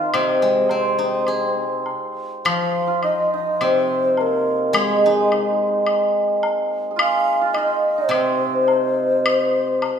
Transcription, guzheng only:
0, 0, Header, 1, 2, 480
1, 0, Start_track
1, 0, Tempo, 576369
1, 122, Time_signature, 4, 2, 24, 8
1, 3966, Tempo, 561798
1, 8436, End_track
2, 0, Start_track
2, 0, Title_t, "Guzheng"
2, 0, Program_c, 0, 107
2, 0, Note_on_c, 0, 51, 59
2, 116, Note_on_c, 0, 48, 56
2, 352, Note_on_c, 0, 56, 44
2, 589, Note_on_c, 0, 60, 39
2, 820, Note_off_c, 0, 51, 0
2, 821, Note_on_c, 0, 63, 44
2, 1064, Note_on_c, 0, 68, 38
2, 1311, Note_off_c, 0, 56, 0
2, 1556, Note_off_c, 0, 48, 0
2, 1558, Note_off_c, 0, 60, 0
2, 1800, Note_off_c, 0, 63, 0
2, 2041, Note_on_c, 0, 53, 58
2, 2044, Note_off_c, 0, 68, 0
2, 3006, Note_on_c, 0, 48, 58
2, 3486, Note_off_c, 0, 53, 0
2, 3941, Note_on_c, 0, 56, 62
2, 4219, Note_on_c, 0, 63, 44
2, 4445, Note_off_c, 0, 48, 0
2, 5163, Note_off_c, 0, 63, 0
2, 5383, Note_off_c, 0, 56, 0
2, 6807, Note_on_c, 0, 48, 65
2, 8273, Note_off_c, 0, 48, 0
2, 8436, End_track
0, 0, End_of_file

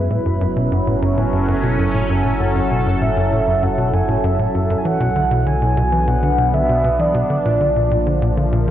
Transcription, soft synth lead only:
0, 0, Header, 1, 2, 480
1, 0, Start_track
1, 0, Key_signature, 3, "minor"
1, 0, Tempo, 612245
1, 1882, Time_signature, 4, 2, 24, 8
1, 6826, End_track
2, 0, Start_track
2, 0, Title_t, "Soft synth lead"
2, 0, Program_c, 0, 80
2, 0, Note_on_c, 0, 83, 116
2, 923, Note_on_c, 0, 81, 109
2, 935, Note_off_c, 0, 83, 0
2, 1404, Note_on_c, 0, 80, 104
2, 1416, Note_off_c, 0, 81, 0
2, 1884, Note_on_c, 0, 78, 105
2, 1896, Note_off_c, 0, 80, 0
2, 2364, Note_on_c, 0, 76, 92
2, 2376, Note_off_c, 0, 78, 0
2, 2846, Note_on_c, 0, 78, 99
2, 2858, Note_off_c, 0, 76, 0
2, 3087, Note_on_c, 0, 80, 101
2, 3098, Note_off_c, 0, 78, 0
2, 3324, Note_on_c, 0, 76, 96
2, 3336, Note_off_c, 0, 80, 0
2, 3744, Note_off_c, 0, 76, 0
2, 3749, Note_on_c, 0, 80, 74
2, 3806, Note_on_c, 0, 78, 98
2, 3818, Note_off_c, 0, 80, 0
2, 4285, Note_on_c, 0, 80, 98
2, 4297, Note_off_c, 0, 78, 0
2, 4766, Note_on_c, 0, 78, 101
2, 4778, Note_off_c, 0, 80, 0
2, 5124, Note_on_c, 0, 76, 92
2, 5136, Note_off_c, 0, 78, 0
2, 5485, Note_on_c, 0, 74, 95
2, 5497, Note_off_c, 0, 76, 0
2, 6826, Note_off_c, 0, 74, 0
2, 6826, End_track
0, 0, End_of_file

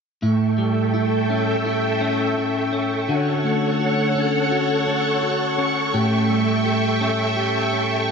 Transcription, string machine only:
0, 0, Header, 1, 2, 480
1, 0, Start_track
1, 0, Tempo, 714286
1, 153, Time_signature, 4, 2, 24, 8
1, 5453, End_track
2, 0, Start_track
2, 0, Title_t, "String machine"
2, 0, Program_c, 0, 50
2, 152, Note_on_c, 0, 76, 70
2, 153, Note_on_c, 0, 69, 75
2, 153, Note_on_c, 0, 85, 75
2, 154, Note_on_c, 0, 79, 71
2, 2053, Note_off_c, 0, 69, 0
2, 2053, Note_off_c, 0, 76, 0
2, 2054, Note_off_c, 0, 79, 0
2, 2071, Note_on_c, 0, 73, 77
2, 2072, Note_on_c, 0, 69, 72
2, 2072, Note_on_c, 0, 78, 74
2, 3973, Note_off_c, 0, 69, 0
2, 3973, Note_off_c, 0, 73, 0
2, 3973, Note_off_c, 0, 78, 0
2, 3990, Note_on_c, 0, 76, 70
2, 3990, Note_on_c, 0, 79, 73
2, 3992, Note_on_c, 0, 69, 74
2, 5453, Note_off_c, 0, 69, 0
2, 5453, Note_off_c, 0, 76, 0
2, 5453, Note_off_c, 0, 79, 0
2, 5453, Note_off_c, 0, 85, 0
2, 5453, End_track
0, 0, End_of_file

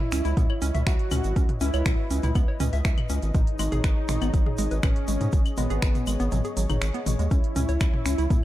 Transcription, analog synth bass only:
0, 0, Header, 1, 2, 480
1, 0, Start_track
1, 0, Key_signature, 4, "minor"
1, 0, Tempo, 495868
1, 1318, Time_signature, 4, 2, 24, 8
1, 8171, End_track
2, 0, Start_track
2, 0, Title_t, "Analog synth bass"
2, 0, Program_c, 0, 38
2, 118, Note_on_c, 0, 37, 95
2, 209, Note_off_c, 0, 37, 0
2, 242, Note_on_c, 0, 37, 83
2, 327, Note_off_c, 0, 37, 0
2, 358, Note_on_c, 0, 37, 102
2, 449, Note_off_c, 0, 37, 0
2, 599, Note_on_c, 0, 37, 96
2, 689, Note_off_c, 0, 37, 0
2, 722, Note_on_c, 0, 37, 84
2, 807, Note_off_c, 0, 37, 0
2, 838, Note_on_c, 0, 37, 102
2, 929, Note_off_c, 0, 37, 0
2, 1078, Note_on_c, 0, 37, 94
2, 1169, Note_off_c, 0, 37, 0
2, 1202, Note_on_c, 0, 32, 85
2, 1287, Note_off_c, 0, 32, 0
2, 1318, Note_on_c, 0, 37, 104
2, 1408, Note_off_c, 0, 37, 0
2, 1558, Note_on_c, 0, 37, 96
2, 1649, Note_off_c, 0, 37, 0
2, 1682, Note_on_c, 0, 37, 81
2, 1767, Note_off_c, 0, 37, 0
2, 1798, Note_on_c, 0, 37, 104
2, 1888, Note_off_c, 0, 37, 0
2, 2038, Note_on_c, 0, 37, 94
2, 2129, Note_off_c, 0, 37, 0
2, 2161, Note_on_c, 0, 37, 83
2, 2247, Note_off_c, 0, 37, 0
2, 2278, Note_on_c, 0, 37, 103
2, 2369, Note_off_c, 0, 37, 0
2, 2518, Note_on_c, 0, 37, 97
2, 2609, Note_off_c, 0, 37, 0
2, 2642, Note_on_c, 0, 37, 84
2, 2727, Note_off_c, 0, 37, 0
2, 2758, Note_on_c, 0, 37, 104
2, 2849, Note_off_c, 0, 37, 0
2, 2999, Note_on_c, 0, 37, 95
2, 3089, Note_off_c, 0, 37, 0
2, 3122, Note_on_c, 0, 32, 84
2, 3207, Note_off_c, 0, 32, 0
2, 3238, Note_on_c, 0, 32, 107
2, 3328, Note_off_c, 0, 32, 0
2, 3479, Note_on_c, 0, 32, 99
2, 3569, Note_off_c, 0, 32, 0
2, 3602, Note_on_c, 0, 32, 82
2, 3687, Note_off_c, 0, 32, 0
2, 3718, Note_on_c, 0, 32, 104
2, 3808, Note_off_c, 0, 32, 0
2, 3958, Note_on_c, 0, 32, 94
2, 4048, Note_off_c, 0, 32, 0
2, 4081, Note_on_c, 0, 32, 84
2, 4167, Note_off_c, 0, 32, 0
2, 4198, Note_on_c, 0, 32, 102
2, 4289, Note_off_c, 0, 32, 0
2, 4437, Note_on_c, 0, 32, 96
2, 4528, Note_off_c, 0, 32, 0
2, 4562, Note_on_c, 0, 32, 83
2, 4647, Note_off_c, 0, 32, 0
2, 4678, Note_on_c, 0, 32, 102
2, 4768, Note_off_c, 0, 32, 0
2, 4917, Note_on_c, 0, 32, 97
2, 5008, Note_off_c, 0, 32, 0
2, 5041, Note_on_c, 0, 44, 81
2, 5127, Note_off_c, 0, 44, 0
2, 5158, Note_on_c, 0, 32, 105
2, 5248, Note_off_c, 0, 32, 0
2, 5398, Note_on_c, 0, 32, 99
2, 5488, Note_off_c, 0, 32, 0
2, 5521, Note_on_c, 0, 32, 80
2, 5607, Note_off_c, 0, 32, 0
2, 5638, Note_on_c, 0, 32, 103
2, 5728, Note_off_c, 0, 32, 0
2, 5879, Note_on_c, 0, 32, 96
2, 5969, Note_off_c, 0, 32, 0
2, 6002, Note_on_c, 0, 32, 83
2, 6087, Note_off_c, 0, 32, 0
2, 6118, Note_on_c, 0, 32, 105
2, 6209, Note_off_c, 0, 32, 0
2, 6358, Note_on_c, 0, 32, 97
2, 6449, Note_off_c, 0, 32, 0
2, 6481, Note_on_c, 0, 32, 83
2, 6567, Note_off_c, 0, 32, 0
2, 6598, Note_on_c, 0, 32, 103
2, 6688, Note_off_c, 0, 32, 0
2, 6838, Note_on_c, 0, 32, 96
2, 6928, Note_off_c, 0, 32, 0
2, 6961, Note_on_c, 0, 39, 83
2, 7047, Note_off_c, 0, 39, 0
2, 7078, Note_on_c, 0, 37, 107
2, 7168, Note_off_c, 0, 37, 0
2, 7318, Note_on_c, 0, 37, 98
2, 7408, Note_off_c, 0, 37, 0
2, 7442, Note_on_c, 0, 37, 81
2, 7527, Note_off_c, 0, 37, 0
2, 7558, Note_on_c, 0, 37, 107
2, 7649, Note_off_c, 0, 37, 0
2, 7798, Note_on_c, 0, 37, 98
2, 7889, Note_off_c, 0, 37, 0
2, 7922, Note_on_c, 0, 37, 84
2, 8007, Note_off_c, 0, 37, 0
2, 8038, Note_on_c, 0, 37, 103
2, 8129, Note_off_c, 0, 37, 0
2, 8171, End_track
0, 0, End_of_file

